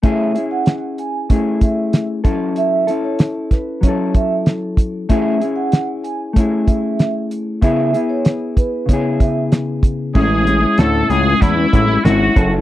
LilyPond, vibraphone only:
\new Staff \with { instrumentName = "Vibraphone" } { \time 4/4 \key a \major \tempo 4 = 95 e''8 r16 fis''8 r16 gis''16 r8. e''8. r8. | e''8 r16 cis''16 r8 b'8 cis''8 e''16 r4 r16 | e''8 r16 fis''8 r16 gis''16 r8. e''8. r8. | e''8 r16 cis''16 r8 b'8 cis''8 e''16 r4 r16 |
r1 | }